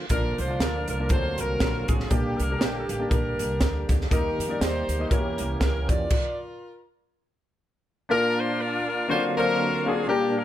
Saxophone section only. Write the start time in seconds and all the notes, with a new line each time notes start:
0.11 D4 F4 A#4
0.38 C5
0.61 A#4
0.89 A#4
1.10 F4 F#4 C5
1.38 F4 F#4 A#4
1.90 G#4
2.10 A#3 D4 G4
2.41 A#4
2.64 G4
2.91 G4
3.11 D4 G4 A#4
4.12 D#4 G4 A#4
4.61 D#4 G4 C5
5.10 C#4 G4 A#4
5.61 A#4
5.88 F4 A#4 D5
8.10 D4 F4 A#4
8.39 C5
8.61 A#4
8.89 A#4
9.09 F4 F#4 C5
9.37 F4 F#4 A#4
9.87 G#4
10.09 A#3 D4 G4
10.37 A#4